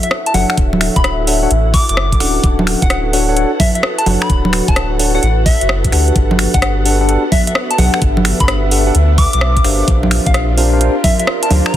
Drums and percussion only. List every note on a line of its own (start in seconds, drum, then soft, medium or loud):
0.03 closed hi-hat medium
0.11 cross-stick loud
0.26 closed hi-hat medium
0.34 open hi-hat loud
0.34 high conga medium
0.50 finger snap medium
0.58 kick loud
0.58 closed hi-hat medium
0.73 high conga medium
0.81 finger snap medium
0.81 open hi-hat loud
0.96 kick loud
0.96 closed hi-hat medium
1.04 cross-stick loud
1.04 closed hi-hat medium
1.27 open hi-hat medium
1.51 closed hi-hat medium
1.74 kick loud
1.74 open hi-hat loud
1.89 closed hi-hat medium
1.97 cross-stick loud
2.12 kick medium
2.12 closed hi-hat medium
2.20 finger snap soft
2.20 open hi-hat loud
2.44 kick loud
2.44 closed hi-hat medium
2.59 high conga medium
2.67 finger snap medium
2.67 open hi-hat loud
2.82 kick loud
2.82 closed hi-hat medium
2.90 cross-stick loud
2.90 closed hi-hat medium
3.13 open hi-hat medium
3.37 closed hi-hat medium
3.60 kick loud
3.60 open hi-hat loud
3.60 high conga medium
3.75 closed hi-hat medium
3.83 cross-stick loud
3.99 closed hi-hat medium
4.06 open hi-hat medium
4.06 high conga medium
4.22 finger snap medium
4.30 kick loud
4.30 closed hi-hat medium
4.45 high conga medium
4.53 finger snap medium
4.53 open hi-hat loud
4.68 kick loud
4.68 closed hi-hat medium
4.76 cross-stick loud
4.76 closed hi-hat medium
4.99 open hi-hat medium
5.23 closed hi-hat medium
5.46 kick loud
5.46 open hi-hat medium
5.61 closed hi-hat medium
5.69 cross-stick loud
5.84 kick medium
5.84 closed hi-hat medium
5.92 finger snap soft
5.92 open hi-hat medium
6.08 closed hi-hat soft
6.16 kick loud
6.16 closed hi-hat medium
6.31 high conga medium
6.39 finger snap medium
6.39 open hi-hat loud
6.54 kick loud
6.54 closed hi-hat medium
6.62 cross-stick loud
6.62 closed hi-hat medium
6.85 open hi-hat medium
7.09 closed hi-hat medium
7.32 kick loud
7.32 open hi-hat loud
7.32 high conga medium
7.47 closed hi-hat medium
7.55 cross-stick loud
7.71 closed hi-hat medium
7.78 open hi-hat medium
7.78 high conga medium
7.94 finger snap medium
8.02 kick loud
8.02 closed hi-hat medium
8.17 high conga medium
8.25 finger snap medium
8.25 open hi-hat loud
8.40 kick loud
8.40 closed hi-hat medium
8.48 cross-stick loud
8.48 closed hi-hat medium
8.71 open hi-hat medium
8.95 closed hi-hat medium
9.18 kick loud
9.18 open hi-hat medium
9.33 closed hi-hat medium
9.41 cross-stick loud
9.57 kick medium
9.57 closed hi-hat medium
9.64 finger snap soft
9.64 open hi-hat medium
9.88 kick loud
9.88 closed hi-hat medium
10.03 high conga medium
10.11 finger snap medium
10.11 open hi-hat loud
10.26 kick loud
10.26 closed hi-hat medium
10.34 cross-stick loud
10.34 closed hi-hat medium
10.57 open hi-hat medium
10.81 closed hi-hat medium
11.04 kick loud
11.04 open hi-hat loud
11.04 high conga medium
11.19 closed hi-hat medium
11.27 cross-stick loud
11.43 closed hi-hat medium
11.51 open hi-hat loud
11.51 high conga medium
11.66 finger snap medium